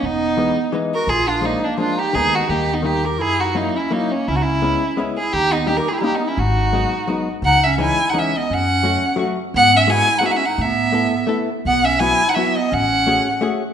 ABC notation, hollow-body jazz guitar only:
X:1
M:3/4
L:1/8
Q:"Swing" 1/4=170
K:G#m
V:1 name="Hollow-body jazz guitar"
z2 [E,G,B,D] z [E,G,B,D] z | z2 [^E,G,A,=D] z [E,G,A,D] z | [D,G,B,D]2 [D,=G,A,D] z [D,G,A,D] z | z2 [F,A,CE] z [F,A,CE] z |
z2 [G,B,CE] z [G,B,CE] z | z2 [=G,A,CD] z [G,A,CD] z | z2 [F,G,B,D] z [F,G,B,D] z | [K:C#m] z2 [E,G,CD] z [E,G,CD] z |
z2 [F,A,CF] z [F,A,CF] z | z2 [G,B,EF] z [G,B,EF] z | z2 [A,B,EA] z [A,B,EA] z | z2 [F,B,EF] z [F,B,EF] z |
z2 [A,CFG] z [A,CFG] z |]